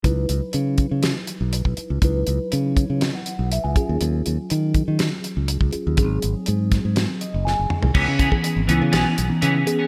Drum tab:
CC |----------------|----------------|----------------|----------------|
HH |x-x-x-x-x-x-x-x-|x-x-x-x-x-x-x-x-|x-x-x-x-x-x-x-x-|x-x-x-x-x-x-----|
SD |--------o-------|--------o-------|--------o-------|------o-o---o---|
T2 |----------------|----------------|----------------|--------------o-|
FT |----------------|----------------|----------------|---------------o|
BD |o-----o------o--|o-----o-------o-|------o------o--|o-----o---------|

CC |x---------------|
HH |--x-x-x-x-x-x-x-|
SD |--------o-------|
T2 |----------------|
FT |----------------|
BD |o-oo------------|